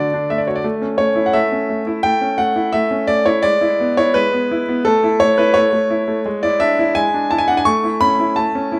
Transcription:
0.00 0.63 D3 medium
0.00 0.29 D5 medium
0.14 0.41 D4 medium
0.30 0.58 A3 medium
0.30 0.39 E5 medium
0.38 0.47 D5 medium
0.47 0.65 F#4 medium
0.47 0.56 C#5 medium
0.56 0.65 D5 medium
0.64 0.97 A3 medium
0.82 1.10 C#4 medium
0.98 1.27 A3 medium
0.98 1.27 C#5 medium
1.15 1.44 E4 medium
1.26 1.34 F#5 medium
1.33 1.68 A3 medium
1.33 2.05 E5 loud
1.52 1.80 C#4 medium
1.70 1.98 A3 medium
1.87 2.15 E4 medium
2.03 2.37 A3 medium
2.03 2.39 G5 loud
2.21 2.50 C#4 medium
2.38 2.68 A3 medium
2.38 2.74 F#5 medium
2.56 2.85 E4 medium
2.73 3.07 A3 medium
2.73 3.09 E5 loud
2.91 3.20 C#4 medium
3.07 3.37 A3 medium
3.07 3.26 D5 loud
3.26 3.44 E4 medium
3.26 3.44 C#5 loud
3.43 4.14 G#3 medium
3.43 3.96 D5 loud
3.61 3.90 E4 medium
3.80 4.08 B3 medium
3.97 4.26 E4 medium
3.97 4.15 C#5 loud
4.14 4.83 G#3 medium
4.14 4.85 B4 loud
4.33 4.61 B3 medium
4.51 4.79 E4 medium
4.69 4.86 B3 medium
4.85 5.19 A3 medium
4.85 5.20 A4 loud
5.04 5.31 E4 medium
5.20 5.49 A3 medium
5.20 5.38 C#5 loud
5.38 5.66 E4 medium
5.38 5.55 B4 medium
5.54 5.71 A3 medium
5.54 6.42 C#5 loud
5.73 6.01 A3 medium
5.90 6.18 E4 medium
6.08 6.25 A3 medium
6.26 6.95 G#3 medium
6.43 6.71 E4 medium
6.43 6.60 D5 loud
6.60 6.89 D4 medium
6.60 6.95 E5 loud
6.79 7.07 E4 medium
6.95 7.64 G#3 medium
6.95 7.29 G#5 loud
7.14 7.41 D4 medium
7.31 7.59 E4 medium
7.31 7.39 A5 loud
7.38 7.47 G#5 loud
7.48 7.66 D4 medium
7.48 7.57 F#5 loud
7.57 7.66 G#5 loud
7.65 8.35 A3 medium
7.65 8.01 C#6 loud
7.84 8.12 E4 medium
8.01 8.29 C#4 medium
8.01 8.36 B5 loud
8.20 8.47 E4 medium
8.36 8.79 A3 medium
8.36 8.79 A5 medium
8.55 8.79 C#4 medium
8.72 8.79 E4 medium

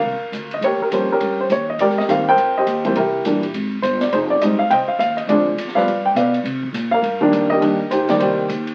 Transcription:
0.00 0.20 C2 medium
0.00 0.49 A#4 medium
0.00 0.48 F5 medium
0.32 0.60 D2 medium
0.32 hi-hat pedal medium
0.32 ride medium
0.51 0.64 D#5 medium
0.51 ride soft
0.61 0.78 D#2 medium
0.61 1.11 G4 medium
0.61 0.82 C#5 medium
0.61 ride medium
0.65 0.81 A#4 medium
0.79 0.87 A#4 medium
0.79 muted upright bass stroke soft
0.79 kick soft
0.91 1.19 F2 medium
0.91 1.08 F3 medium
0.91 1.08 G3 soft
0.91 1.08 A#3 medium
0.91 1.09 C#4 medium
0.91 1.11 C5 medium
0.91 hi-hat pedal medium
0.91 ride medium
1.12 1.66 C#4 medium
1.12 1.66 G4 medium
1.12 1.38 A#4 medium
1.20 1.49 G2 medium
1.20 ride medium
1.41 1.45 C5 medium
1.50 1.78 D#2 medium
1.50 1.69 C#5 medium
1.50 hi-hat pedal medium
1.50 ride medium
1.70 1.79 D#5 medium
1.78 2.07 G#2 medium
1.78 2.34 G4 medium
1.78 2.28 A#4 medium
1.78 1.86 D5 medium
1.78 ride medium
1.89 snare soft
1.98 2.03 D#5 medium
1.98 snare soft
2.08 2.36 G2 medium
2.08 2.24 D#3 medium
2.08 2.25 G3 soft
2.08 2.25 A#3 medium
2.08 2.25 C4 medium
2.08 2.28 F5 medium
2.08 hi-hat pedal medium
2.08 ride medium
2.29 2.82 A#4 medium
2.29 2.57 C5 medium
2.29 2.55 G5 loud
2.36 2.65 F2 medium
2.36 ride medium
2.58 2.95 G4 medium
2.58 2.85 C5 medium
2.58 2.84 D#5 medium
2.66 2.95 D#2 medium
2.66 hi-hat pedal soft
2.66 ride medium
2.85 2.95 E3 medium
2.85 2.95 G3 medium
2.85 2.95 A#3 medium
2.85 2.95 C4 medium
2.85 2.97 C5 medium
2.85 ride soft
2.95 3.24 C2 medium
2.95 3.51 E4 soft
2.95 3.51 G4 medium
2.95 3.23 A#4 medium
2.95 ride medium
3.25 3.53 A#1 medium
3.25 3.41 E3 medium
3.25 3.41 G3 soft
3.25 3.41 A#3 soft
3.25 3.42 D4 medium
3.25 hi-hat pedal medium
3.25 ride medium
3.43 ride soft
3.54 3.82 G#1 medium
3.54 ride medium
3.82 4.11 G1 medium
3.82 4.01 C5 medium
3.82 hi-hat pedal medium
3.82 ride medium
4.01 4.12 D5 medium
4.01 snare soft
4.01 ride soft
4.12 4.41 F1 medium
4.12 4.42 D#4 medium
4.12 4.68 G#4 medium
4.12 4.18 C5 medium
4.12 ride medium
4.30 4.41 D5 medium
4.41 4.70 G#1 medium
4.41 4.58 G3 soft
4.41 4.58 G#3 soft
4.41 4.58 C4 medium
4.41 4.59 D#4 medium
4.41 4.60 D#5 medium
4.41 hi-hat pedal medium
4.41 ride medium
4.59 4.71 F5 medium
4.70 4.87 C2 medium
4.70 5.26 C5 medium
4.70 5.15 D#5 medium
4.70 4.75 G5 loud
4.70 ride medium
4.88 4.98 F5 medium
4.88 muted upright bass stroke soft
4.99 5.27 D#2 medium
4.99 5.16 F5 loud
4.99 hi-hat pedal soft
4.99 ride medium
5.17 5.22 D#5 medium
5.17 ride soft
5.27 5.56 D2 medium
5.27 5.45 F3 medium
5.27 5.45 G#3 medium
5.27 5.45 C4 soft
5.27 5.45 D4 medium
5.27 5.75 F4 medium
5.27 5.84 G#4 medium
5.27 5.73 D5 medium
5.27 ride medium
5.57 5.85 F2 medium
5.57 hi-hat pedal soft
5.57 ride medium
5.68 snare soft
5.75 5.86 F3 medium
5.75 5.86 G3 soft
5.75 5.86 B3 medium
5.75 5.87 F4 medium
5.75 6.16 B4 medium
5.75 6.16 D5 medium
5.75 6.03 F5 medium
5.75 snare soft
5.85 6.14 G2 medium
5.85 ride medium
6.06 6.10 G5 medium
6.15 6.43 B2 medium
6.15 6.44 B4 medium
6.15 6.44 D5 medium
6.15 6.38 F5 medium
6.15 hi-hat pedal medium
6.15 ride medium
6.34 ride soft
6.43 6.72 C3 medium
6.43 ride medium
6.63 kick soft
6.73 7.01 A#2 medium
6.73 hi-hat pedal medium
6.73 ride medium
6.91 7.48 A#4 medium
6.91 7.46 F5 loud
7.02 7.31 G2 medium
7.02 ride medium
7.21 7.59 D#3 medium
7.21 7.59 G3 medium
7.21 7.60 A#3 medium
7.21 7.60 D4 medium
7.21 kick medium
7.32 7.61 F2 loud
7.32 hi-hat pedal medium
7.32 ride medium
7.50 7.91 G4 medium
7.50 8.05 A#4 medium
7.50 7.92 D#5 loud
7.60 7.90 D#2 medium
7.60 7.77 D#3 medium
7.60 7.78 G3 medium
7.60 7.78 A#3 soft
7.60 7.78 D4 medium
7.60 ride medium
7.90 8.18 D2 medium
7.90 8.20 D#4 medium
7.90 8.20 G4 medium
7.90 8.18 C5 medium
7.90 hi-hat pedal medium
7.90 ride medium
8.08 8.47 D#3 medium
8.08 8.47 G3 medium
8.08 8.47 A#3 medium
8.08 8.48 D5 medium
8.08 snare medium
8.08 ride soft
8.19 8.48 C2 medium
8.19 8.75 D#4 medium
8.19 8.75 G4 medium
8.19 8.64 C5 medium
8.19 ride medium
8.48 8.75 D#2 medium
8.48 hi-hat pedal medium
8.48 ride medium
8.67 ride soft

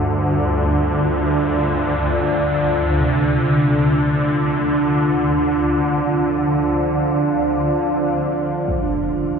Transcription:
0.00 8.74 D2 medium
0.00 0.82 G2 medium
0.00 8.64 D3 medium
0.00 9.39 D4 medium
0.00 8.69 F4 medium
0.00 9.39 F4 medium
0.00 9.39 C5 medium
0.64 6.23 D2 medium
3.00 8.66 C3 medium
8.65 9.39 D3 medium
8.65 impact medium

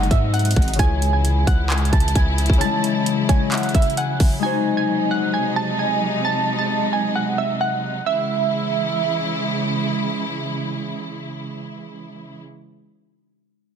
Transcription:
0.00 0.75 C3 medium
0.00 0.75 F#3 medium
0.00 0.84 G#3 medium
0.00 2.57 G#3 medium
0.00 0.75 D#4 medium
0.00 0.85 D#4 medium
0.00 1.42 F#4 medium
0.00 0.81 C5 medium
0.00 closed hi-hat soft
0.11 0.55 G#2 loud
0.11 0.32 E5 medium
0.11 kick loud
0.11 closed hi-hat medium
0.34 0.76 F#5 medium
0.34 closed hi-hat soft
0.39 closed hi-hat medium
0.45 closed hi-hat medium
0.51 closed hi-hat medium
0.56 0.78 G#1 loud
0.56 kick loud
0.56 closed hi-hat soft
0.56 open hi-hat medium
0.62 closed hi-hat medium
0.68 closed hi-hat medium
0.73 2.56 C#3 medium
0.73 2.59 C#4 medium
0.73 closed hi-hat medium
0.79 1.45 C#2 loud
0.79 4.39 C#3 medium
0.79 4.39 E3 medium
0.79 4.39 E4 medium
0.79 2.61 E4 medium
0.79 3.09 G#4 medium
0.79 1.11 G#5 loud
0.79 kick loud
0.79 closed hi-hat medium
1.02 closed hi-hat medium
1.13 1.45 G#5 medium
1.25 closed hi-hat medium
1.47 1.91 C#2 loud
1.47 1.68 F#5 medium
1.47 kick loud
1.47 closed hi-hat medium
1.70 1.91 G#5 medium
1.70 clap loud
1.70 closed hi-hat soft
1.78 closed hi-hat medium
1.85 closed hi-hat medium
1.93 2.15 C#2 loud
1.93 2.13 A5 medium
1.93 kick loud
1.93 closed hi-hat medium
2.00 closed hi-hat medium
2.08 closed hi-hat medium
2.15 2.48 C#2 loud
2.15 2.58 G#5 medium
2.15 kick medium
2.15 closed hi-hat medium
2.38 closed hi-hat medium
2.46 2.60 C#2 loud
2.46 kick medium
2.46 closed hi-hat medium
2.53 closed hi-hat soft
2.58 4.48 C#3 medium
2.58 8.02 F#3 medium
2.58 4.52 C#4 medium
2.58 2.93 A5 loud
2.58 closed hi-hat medium
2.62 4.38 G#3 medium
2.62 4.48 E4 medium
2.84 closed hi-hat medium
2.95 3.27 A5 medium
3.06 closed hi-hat medium
3.29 4.52 C#5 medium
3.29 3.50 G#5 medium
3.29 kick loud
3.29 closed hi-hat medium
3.40 3.58 D#5 medium
3.52 4.48 E5 medium
3.52 3.73 F#5 medium
3.52 clap loud
3.52 closed hi-hat medium
3.58 closed hi-hat medium
3.63 closed hi-hat medium
3.69 closed hi-hat soft
3.75 3.95 E5 medium
3.75 kick loud
3.75 closed hi-hat medium
3.82 closed hi-hat medium
3.90 closed hi-hat soft
3.97 4.18 F#5 medium
3.97 5.48 G#5 medium
3.97 closed hi-hat medium
4.20 kick loud
4.20 open hi-hat medium
4.39 8.03 C3 medium
4.39 8.11 G#3 medium
4.39 8.03 G#3 medium
4.39 7.12 D#4 medium
4.39 8.03 D#4 medium
4.39 4.75 G#5 loud
4.44 6.87 F#4 medium
4.44 6.44 C5 loud
4.77 5.09 G#5 medium
5.11 5.32 F#5 medium
5.34 5.54 G#5 medium
5.56 5.77 A5 medium
5.79 6.22 G#5 medium
6.25 6.57 A5 loud
6.59 6.91 A5 medium
6.93 7.13 G#5 medium
7.15 7.36 F#5 medium
7.38 7.59 E5 medium
7.61 8.04 F#5 medium
8.06 12.42 C#3 medium
8.06 12.42 E3 medium
8.06 12.42 G#3 medium
8.06 12.42 E4 medium
8.06 9.39 E5 medium

